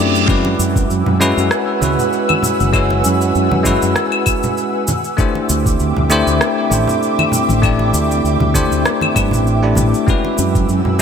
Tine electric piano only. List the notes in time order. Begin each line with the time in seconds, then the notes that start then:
Already playing: A3 D4 E4 G4 B4 C5 D5
0.26 G#3 C#4 E4 F#4 B4
1.20 G#3 C#4 E4 F#4 B4
1.81 G#3 C#4 E4 F#4 B4
2.72 G#3 C#4 E4 F#4 C#5
3.63 G#3 C#4 E4 F#4 B4
5.17 A3 D4 E4 G4 C5
6.10 A3 D4 E4 G4 C5
6.70 A3 D4 E4 G4 C5
7.62 A3 D4 E4 G4 D5
8.54 A3 D4 E4 G4 C5
9.15 A3 D4 E4 G4 B4
9.62 A3 D4 E4 G4 D5
10.07 G#3 C#4 E4 F#4 B4